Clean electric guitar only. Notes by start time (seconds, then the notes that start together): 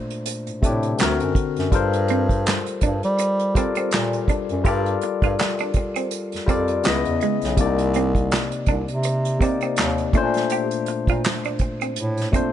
2.10 C4
2.83 D4
3.20 muted clean electric guitar stroke
3.57 C4
3.77 C4
4.29 D4
4.66 G4
5.03 muted clean electric guitar stroke
5.24 F4
5.61 D4
5.77 muted clean electric guitar stroke
5.96 C4
6.49 C4
7.23 G#3
7.96 C4
8.69 D4
9.05 muted clean electric guitar stroke
9.42 C4
9.63 C4
10.15 D4
10.52 G4
10.88 muted clean electric guitar stroke
11.10 F4
11.46 D4
11.61 muted clean electric guitar stroke
11.82 C4
12.34 C4